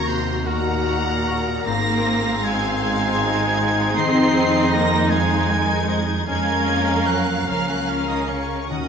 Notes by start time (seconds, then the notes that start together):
Already playing: D#2 D#3 A#3 D#4 F#4 A#4 A#5
0.07 C3 F#4 G#4 C5 C6 C#6
0.46 A#2 F#4 A#4 F#5 A#5 C#6
0.86 F#4 G#4 C#6
1.26 F#4 A#4 C#6
1.66 G#1 G#2 A#3 C4 D#4 G#4 F5 A#5 C6 A#6
2.06 C5
2.44 G#3 A#4 G#5 G#6
2.82 G#3 C5 G#5 G#6
3.58 C5
3.95 F2 D#3 C4 D#4 D#5 C6 C7
4.35 C5
4.72 A#3 A#4 A#5 A#6
5.10 G#3 C5 F5 G#5 G#6
5.50 A#4 G#5
5.89 C5 D#5
6.26 F2 G#3 A#3 C#4 A#4 F5 G#5 A#5 G#6
6.67 C#5
7.07 F#3 C5 F#5 F#6
7.47 C#2 F3 A#3 C#4 A#4 C#5 F5 A#5 F6
7.68 F#3 F#5 F#6
7.88 F3 C5 F5 F6
8.08 D#3 G#3 D#5 D#6
8.28 C#3 C#5 C#6
8.69 D#2 D#3 F#3 C#4 F#4 D#5 F#5 D#6
8.79 D#3